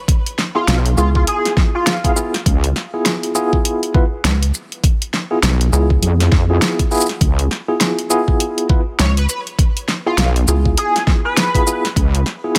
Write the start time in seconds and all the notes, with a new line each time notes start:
0.08 kick, closed hi-hat
0.26 closed hi-hat
0.39 snare
0.55 B3 E4 F4 G#4
0.68 B1, snare, closed hi-hat
0.86 closed hi-hat
0.97 C#2 B3 E4 F4 G#4, shaker
1.15 F4, kick
1.27 G#4, closed hi-hat
1.45 snare, closed hi-hat
1.57 kick, snare
1.75 F4
1.87 snare, closed hi-hat
2.04 B3 E4 F4 G#4, kick, closed hi-hat
2.16 B3 E4 F4 G#4, shaker
2.34 snare, closed hi-hat
2.46 C#2, kick, closed hi-hat
2.64 closed hi-hat
2.76 snare
2.94 B3 E4 F4 G#4
3.06 snare, closed hi-hat
3.23 closed hi-hat
3.35 B3 E4 F4 G#4, shaker
3.53 kick
3.65 closed hi-hat
3.83 closed hi-hat
3.94 B3 E4 F4 B4, kick
4.24 C#2, snare, closed hi-hat
4.43 closed hi-hat
4.54 shaker
4.72 closed hi-hat
4.84 kick, closed hi-hat
5.02 closed hi-hat
5.14 snare
5.31 B3 E4 F4 G#4
5.43 B1, snare, closed hi-hat
5.61 closed hi-hat
5.72 C#2 B3 E4 F4 G#4, shaker
5.90 kick
6.02 F2, closed hi-hat
6.20 snare, closed hi-hat
6.32 F2, kick, snare
6.50 B3 E4 F4 G#4
6.62 snare, closed hi-hat
6.79 kick, closed hi-hat
6.91 B3 E4 F4 G#4, shaker
6.94 shaker
6.97 shaker
7.00 shaker
7.06 snare, closed hi-hat, shaker
7.21 C#2, kick, closed hi-hat
7.39 closed hi-hat
7.51 snare
7.68 B3 E4 F4 G#4
7.81 snare, closed hi-hat
7.99 closed hi-hat
8.10 B3 E4 F4 G#4, shaker
8.28 kick
8.40 closed hi-hat
8.58 closed hi-hat
8.69 B3 E4 F4 B4, kick
8.99 C#2 C#5, snare, closed hi-hat
9.17 B4, closed hi-hat
9.29 B4, shaker
9.47 closed hi-hat
9.59 kick, closed hi-hat
9.77 closed hi-hat
9.88 snare
10.06 B3 E4 F4 G#4
10.18 B1, snare, closed hi-hat
10.36 closed hi-hat
10.48 C#2 B3 E4 F4 G#4, shaker
10.65 kick
10.77 G#4, closed hi-hat
10.96 snare, closed hi-hat
11.07 kick, snare
11.25 B4
11.37 snare, closed hi-hat
11.55 B3 E4 F4 G#4, kick, closed hi-hat
11.67 B3 E4 F4 G#4, shaker
11.85 snare, closed hi-hat
11.96 C#2, kick, closed hi-hat
12.15 closed hi-hat
12.26 snare
12.44 B3 E4 F4 G#4